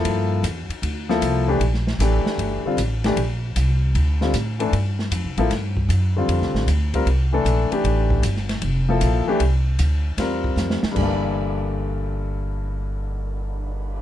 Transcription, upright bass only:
X:1
M:4/4
L:1/8
Q:"Swing" 1/4=154
K:Gdor
V:1 name="Upright bass" clef=bass
G,,2 E,, z D,,2 C,,2 | B,,,2 A,,, z G,,, z A,,,2 | B,,,2 C,,2 D,,2 A,,2 | G,,2 (3F,, C,, A,,, G,,2 ^F,,2 |
(3F,, C,, A,,, D,,2 C,,2 B,,, z | A,,,2 G,,,2 F,,,2 B,,, z | C,,2 D,,2 E,,2 F,, z | G,,,8- |
G,,,8 |]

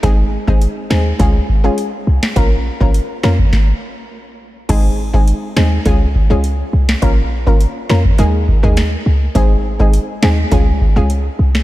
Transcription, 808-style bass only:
X:1
M:4/4
L:1/16
Q:1/4=103
K:Ab
V:1 name="808-style bass" clef=bass
A,,,3 A,,, z2 E,,2 D,,2 z4 C,, z | B,,,3 B,,, z2 F,,2 z8 | A,,,4 z2 E,,2 D,,3 D,,3 C,,2 | B,,,4 z2 F,,2 E,,3 E,,3 D,,2 |
A,,,4 z2 E,,2 D,,3 D,,3 C,,2 |]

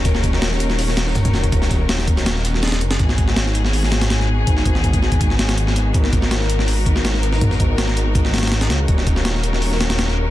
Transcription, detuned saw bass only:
X:1
M:4/4
L:1/8
Q:1/4=163
K:G#m
V:1 name="Detuned saw bass" clef=bass
D,,,2 D,,,6 | D,,,2 D,,,4- D,,, F,,, | G,,,8 | G,,,2 G,,,6 |
G,,,2 G,,,6 | G,,,2 G,,,4- G,,, C,, | D,,,8 |]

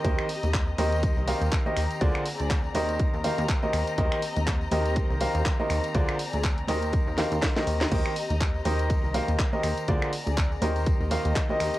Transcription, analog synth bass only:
X:1
M:4/4
L:1/16
Q:"Swing 16ths" 1/4=122
K:Eb
V:1 name="Analog synth bass" clef=bass
E,, z2 E,,3 E,,3 C,, z E,, z2 E,, z | D,, z2 D,,3 E,,3 E,, z E,, z2 E,, z | E,, z2 E,,3 E,,3 C,, z E,, z2 E,, z | D,, z2 D,,3 E,,3 E,, z E,, z2 E,, z |
E,, z2 E,,3 E,,3 C,, z E,, z2 E,, z | D,, z2 D,,3 E,,3 E,, z E,, z2 E,, z |]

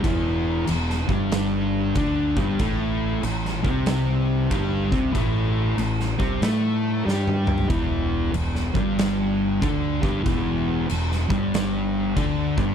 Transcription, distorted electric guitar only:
X:1
M:4/4
L:1/8
Q:"Swing" 1/4=94
K:Em
V:1 name="Distorted electric guitar" clef=bass
[E,,E,]2 E,, [G,,G,]3 [D,D] [G,,G,] | [A,,A,]2 A,, [C,C]3 [G,,G,] [C,C] | [A,,A,]2 A,, [C,C] [A,A]2 [G,G]2 | [E,,E,]2 E,, [G,,G,]3 [D,D] [G,,G,] |
[E,,E,]2 E,, [G,,G,]3 [D,D] [G,,G,] |]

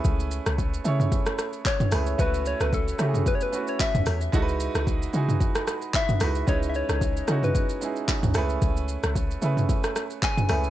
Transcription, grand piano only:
X:1
M:4/4
L:1/8
Q:"Swing 16ths" 1/4=112
K:Alyd
V:1 name="Grand piano"
[A,CEGB]2 z [A,CEGc]3 z [A,CEGB] | [A,CEFB]2 z [A,CEF=G^G]2 [A,CEFB]2 z | [G,DEFAB]2 z [G,DEFG]3 z [G,DEFB] | [G,CDEB]2 z [G,CDEF]2 [G,CDEG]2 [A,CEGB]- |
[A,CEGB]2 z [A,CEGB]3 z [A,CEGB] |]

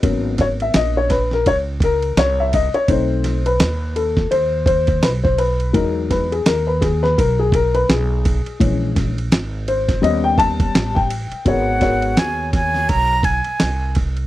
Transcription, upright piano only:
X:1
M:4/4
L:1/16
Q:"Swing 16ths" 1/4=84
K:G#m
V:1 name="Upright piano"
z2 c e d c B A c2 A2 c e d c | =c3 B3 =A2 c2 c2 B c B2 | A2 B G A B G B A G A B G4- | G2 z4 ^B2 d =g =a3 g3 |
[B,FGAc]2 [B,FGAc]6- [B,FGAc] z6 z |]
V:2 name="Upright piano"
[F,A,B,C]6 z8 z2 | [=A,=CD]2 z12 z2 | [F,G,D]2 z12 z2 | [E,G,C]2 z6 [=G,B,C]6 z2 |
z16 |]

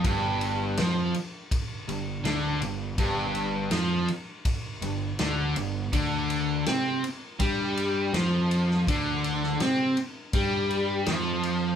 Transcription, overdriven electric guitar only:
X:1
M:4/4
L:1/8
Q:1/4=82
K:Dphr
V:1 name="Overdriven electric guitar" clef=bass
G,,2 F, z2 G,, D, G,, | G,,2 F, z2 G,, D, G,, | D,2 C z G,2 F,2 | D,2 C z G,2 F,2 |]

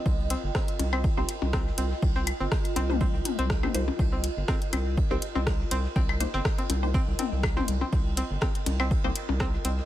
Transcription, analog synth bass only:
X:1
M:4/4
L:1/16
Q:"Swing 16ths" 1/4=122
K:Cm
V:1 name="Analog synth bass" clef=bass
C,,2 z G,,, z2 C,,2 z C,, z C,,2 z C,, z | C,,2 z G,,, z2 C,,2 z C,, z C,,2 z C,, z | C,,2 z G,,, z2 C,,2 z C,, z C,,2 z C,, z | C,,2 z G,,, z2 C,,2 z C,, z C,,2 z C,, z |
C,,2 z G,,, z2 C,,2 z C,, z C,,2 z C,, z |]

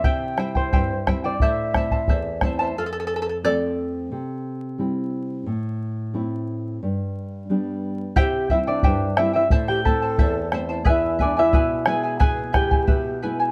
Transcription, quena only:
X:1
M:2/4
L:1/16
Q:1/4=89
K:Am
V:1 name="Quena"
g3 c4 d | e6 z2 | z8 | z8 |
z8 | z8 | G2 E D3 E E- | E G A4 z2 |
E2 D E3 ^G2 | ^G2 =G4 z2 |]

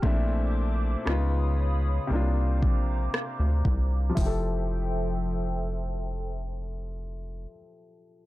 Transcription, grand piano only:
X:1
M:4/4
L:1/8
Q:1/4=58
K:F
V:1 name="Grand piano"
[B,,A,CDE]2 [_D,_C_EF]2 [=C,B,=DF]4 | [F,EGA]8 |]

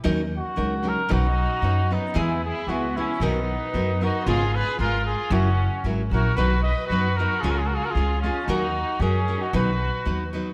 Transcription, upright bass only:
X:1
M:2/4
L:1/8
Q:1/4=114
K:B
V:1 name="Upright bass" clef=bass
D,,2 C,,2 | B,,,2 F,,2 | E,,2 C,,2 | B,,,2 F,,2 |
G,,,2 G,,,2 | F,,,2 G,,, A,,, | B,,,2 F,,2 | C,,2 C,,2 |
D,,2 F,,2 | B,,,2 D,,2 |]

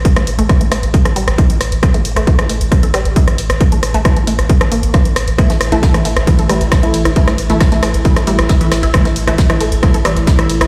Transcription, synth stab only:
X:1
M:4/4
L:1/16
Q:1/4=135
K:Cmix
V:1 name="Synth stab"
z16 | z16 | z16 | [E,A,E] z2 [E,A,E]2 [E,A,E]2 z [E,A,E]2 [E,A,E]3 [E,A,E]2 z |
[E,A,E] z2 [E,A,E]2 [E,A,E]2 z [E,A,E]2 [E,A,E]3 [E,A,E]2 z | [E,A,E] z2 [E,A,E]2 [E,A,E]2 z [E,A,E]2 [E,A,E]3 [E,A,E]2 z |]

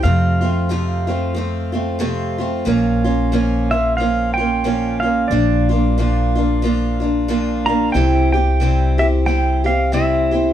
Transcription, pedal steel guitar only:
X:1
M:4/4
L:1/8
Q:"Swing" 1/4=91
K:Bblyd
V:1 name="Pedal steel guitar"
f4- f z3 | z3 e f g2 f | d4- d z2 b | g g2 e g f e2 |]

